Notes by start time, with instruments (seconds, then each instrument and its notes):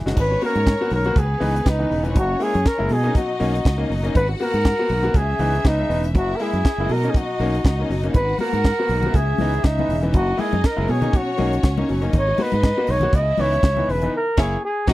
0.06 fingered electric bass F#1, grand piano G#3 D#4 F#4, snare
0.16 fingered electric bass G#1, grand piano G#2 D#3, string section C#4 C#5, kick, crash
0.20 flugelhorn B4
0.31 grand piano B3 F#4
0.41 grand piano A#3 B3 F#4, flugelhorn A#4, open hi-hat
0.55 fingered electric bass G#2, closed hi-hat
0.67 kick, snare, closed hi-hat
0.81 grand piano A#3 B3 F#4
0.90 fingered electric bass B1, grand piano G#2 D#3, flugelhorn A#4, open hi-hat
1.05 grand piano A#3 B3 F#4, closed hi-hat
1.15 fingered electric bass C#2, grand piano C#3, string section B3 B4, flugelhorn G#4, kick, closed hi-hat
1.40 fingered electric bass C#2, grand piano E3 B3 D#4, open hi-hat
1.55 grand piano B3 D#4, closed hi-hat
1.66 fingered electric bass C#2, flugelhorn D#4, kick, snare, closed hi-hat
1.79 grand piano E3 B3 D#4
1.90 fingered electric bass E1, grand piano C#3, open hi-hat
2.03 grand piano E3 B3 D#4, closed hi-hat
2.14 fingered electric bass F#1, grand piano F#3, string section C#4 C#5, kick, closed hi-hat
2.18 flugelhorn F#4
2.29 grand piano A#3 E4
2.39 grand piano G#3 A#3 E4, flugelhorn G#4, open hi-hat
2.54 fingered electric bass F#2, closed hi-hat
2.66 flugelhorn A#4, kick, snare, closed hi-hat
2.78 fingered electric bass F#1, grand piano G#3 A#3 E4
2.89 grand piano B2 F#3, fingered electric bass B2, string section D#4 D#5, flugelhorn G#4, open hi-hat
3.03 grand piano A#3 C#4 D#4, closed hi-hat
3.15 grand piano B2 F#3, flugelhorn F#4, kick, closed hi-hat
3.40 fingered electric bass B1, grand piano A#3 C#4 D#4, open hi-hat
3.54 grand piano C#4 D#4, closed hi-hat
3.65 fingered electric bass C#2, kick, snare, closed hi-hat
3.78 grand piano A#3 C#4 D#4
3.89 fingered electric bass F#1, grand piano B2 F#3, open hi-hat
4.03 grand piano A#3 C#4 D#4, closed hi-hat
4.14 fingered electric bass G#1, grand piano G#2 D#3, string section F#4 F#5, flugelhorn B4, kick, closed hi-hat
4.28 grand piano B3 F#4
4.39 grand piano A#3 B3 F#4, flugelhorn A#4, open hi-hat
4.53 fingered electric bass G#2, closed hi-hat
4.65 kick, snare, closed hi-hat
4.79 grand piano A#3 B3 F#4
4.89 fingered electric bass B1, grand piano G#2 D#3, open hi-hat
5.03 grand piano A#3 B3 F#4, closed hi-hat
5.14 fingered electric bass C#2, grand piano C#3, string section C#4 E5, flugelhorn G#4, kick, closed hi-hat
5.39 fingered electric bass C#2, grand piano E3 B3 D#4, open hi-hat
5.55 grand piano B3 D#4, closed hi-hat
5.65 fingered electric bass C#2, grand piano B3 D#4, flugelhorn D#4, kick, snare, closed hi-hat
5.79 grand piano C#3
5.89 fingered electric bass E1, grand piano B3 D#4, open hi-hat
6.04 closed hi-hat
6.15 fingered electric bass F#1, grand piano F#3, string section E4 E5, flugelhorn F#4, kick, closed hi-hat
6.30 grand piano A#3 E4
6.36 grand piano G#3 E4, flugelhorn A#4, open hi-hat
6.40 grand piano A#3, flugelhorn G#4
6.53 fingered electric bass F#2, closed hi-hat
6.65 kick, snare, closed hi-hat
6.78 fingered electric bass F#1, grand piano G#3 A#3 E4
6.88 fingered electric bass B2, grand piano B2 F#3, string section D#4 D#5, open hi-hat
6.92 flugelhorn A#4
7.03 grand piano A#3 C#4 D#4, closed hi-hat
7.10 flugelhorn G#4
7.14 grand piano B2 F#3, flugelhorn F#4, kick, closed hi-hat
7.40 fingered electric bass B1, grand piano A#3 C#4 D#4, open hi-hat
7.55 grand piano C#4 D#4, closed hi-hat
7.65 fingered electric bass C#2, kick, snare, closed hi-hat
7.79 grand piano A#3 C#4 D#4
7.90 fingered electric bass F#1, grand piano B2 F#3, open hi-hat
8.03 grand piano A#3 C#4 D#4, closed hi-hat
8.14 fingered electric bass G#1, grand piano G#2 D#3, string section F#4 F#5, flugelhorn B4, kick, closed hi-hat, muted conga, low conga
8.29 grand piano B3 F#4
8.38 grand piano A#3 B3 F#4, flugelhorn A#4, open hi-hat, high conga
8.53 fingered electric bass G#2, closed hi-hat, high conga
8.64 kick, snare, closed hi-hat, muted conga
8.79 grand piano A#3 B3 F#4
8.88 fingered electric bass B1, grand piano G#2 D#3, open hi-hat
9.03 grand piano A#3 B3 F#4, closed hi-hat, low conga
9.14 fingered electric bass C#2, grand piano C#3, string section C#4 E5, flugelhorn G#4, kick, closed hi-hat, muted conga
9.38 fingered electric bass C#2, grand piano E3 B3 D#4, open hi-hat, muted conga, high conga
9.54 grand piano B3 D#4, closed hi-hat
9.64 fingered electric bass C#2, flugelhorn D#4, kick, snare, closed hi-hat, muted conga
9.79 grand piano E3 B3 D#4, high conga
9.89 fingered electric bass E1, grand piano C#3, open hi-hat
10.03 grand piano E3 B3 D#4, closed hi-hat
10.13 fingered electric bass F#1, grand piano F#3, string section D#4 D#5, flugelhorn F#4, kick, closed hi-hat, low conga
10.27 grand piano A#3 E4
10.37 grand piano G#3 A#3 E4, flugelhorn G#4, open hi-hat, high conga
10.52 fingered electric bass F#2, closed hi-hat, high conga
10.64 flugelhorn A#4, kick, snare, closed hi-hat, muted conga
10.76 fingered electric bass F#1, grand piano G#3 A#3 E4
10.87 grand piano B2 F#3, fingered electric bass B2, string section C#4 C#5, flugelhorn G#4, open hi-hat, muted conga
11.01 grand piano A#3 C#4 D#4, closed hi-hat, low conga
11.13 grand piano B2 F#3, flugelhorn F#4, kick, closed hi-hat, muted conga
11.38 fingered electric bass B1, grand piano A#3 C#4 D#4, open hi-hat, muted conga, high conga
11.53 grand piano C#4 D#4, closed hi-hat
11.63 fingered electric bass C#2, kick, snare, closed hi-hat, muted conga
11.77 grand piano A#3 C#4 D#4, high conga
11.89 fingered electric bass F#1, grand piano B2 F#3, open hi-hat
12.02 grand piano A#3 C#4 D#4, closed hi-hat
12.13 fingered electric bass G#1, grand piano G#2 D#3, string section D#4 D#5, kick, closed hi-hat, low conga
12.18 flugelhorn C#5
12.27 grand piano B3 F#4
12.38 grand piano A#3 B3 F#4, open hi-hat, muted conga, high conga
12.42 flugelhorn B4
12.52 fingered electric bass G#2, closed hi-hat, high conga
12.63 kick, snare, closed hi-hat, muted conga
12.77 grand piano A#3 B3 F#4
12.87 fingered electric bass B1, grand piano G#2 D#3, open hi-hat
12.91 flugelhorn C#5
13.01 grand piano A#3 B3 F#4, closed hi-hat, low conga
13.13 fingered electric bass C#2, grand piano C#3, string section E4 E5, flugelhorn D#5, kick, closed hi-hat
13.38 fingered electric bass C#2, grand piano E3 B3 D#4, flugelhorn C#5, open hi-hat, muted conga, high conga
13.53 grand piano B3 D#4, closed hi-hat
13.63 fingered electric bass C#2, kick, snare, closed hi-hat, muted conga
13.77 grand piano E3 B3 D#4, high conga
13.88 fingered electric bass E1, grand piano C#3, flugelhorn B4, open hi-hat
14.02 grand piano E3 B3 D#4, closed hi-hat
14.16 flugelhorn A#4
14.37 fingered electric bass F#1, grand piano A#3 E4, string section C#4 C#5, flugelhorn G#4, kick, snare, crash
14.65 flugelhorn G#4
14.87 fingered electric bass B1, grand piano B2 F#3, string section D#4 D#5, flugelhorn F#4, kick, snare